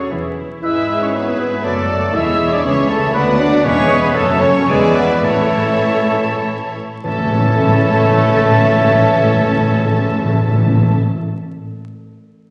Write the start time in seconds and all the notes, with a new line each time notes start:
Already playing: F#3 C#4 A4 C#5 C#6
0.00 F#4
0.11 E1 E2 E3 E4 G#4 B4 E5
0.62 G#1 G#2 G#3 E4 G#4 B4 E5 E6
1.00 C#4 C#5 C#6
1.13 F#3 B3 E4 G#4 B4 E5 B5
1.40 E3
1.63 F#1 F#2 F#3 A3 F#4 A4 D5 A5
2.14 E1 E2 G#3 E4 G#4 C#5 E5 E6
2.52 D4 D5 D6
2.63 C#2 E3 C#4 G#4 C#5 E5 C#6
2.88 A3 A4 A5
3.14 D2 F#3 B3 F#4 B4 D5 F#5 B5
3.39 D4 D5 D6
3.64 E1 E2 G#3 C#4 G#4 B4 C#5 E5 C#6
4.01 B3 B4 B5
4.14 F#1 F#2 F#3 A3 A4 C#5 A5
4.40 C#4 C#5 C#6
4.68 E1 E2 E3 G#3 E4 G#4 B4 D5 E5 G#5
4.95 B3 B4 B5
5.23 A1 A2 E3 A3 E4 A4 C#5 E5 A5
7.03 A1 A2 E3 A3 C#4 A4 C#5 E5 A5
7.11 A2
7.18 A2
7.25 A2
7.32 A2
7.39 A2
7.46 A2
7.53 A2
7.60 A2
7.67 A2
7.74 A2
7.81 A2
7.88 A2
7.95 A2
8.02 A2
8.09 A2
8.16 A2
8.23 A2
8.30 A2
8.36 A2
8.43 A2
8.51 A2
8.59 A2
8.65 A2
8.72 A2
8.80 A2
8.86 A2
8.93 A2
9.00 A2
9.06 A2
9.14 A2
9.20 A2
9.27 A2
9.35 A2
9.42 A2
9.49 A2
9.56 A2
9.63 A2
9.70 A2
9.77 A2
9.84 A2
9.90 A2
9.97 A2
10.04 A2
10.11 A2
10.18 A2
10.25 A2
10.32 A2
10.39 A2
10.47 A2
10.54 A2
10.60 A2
10.67 A2
10.74 A2
10.81 A2
10.88 A2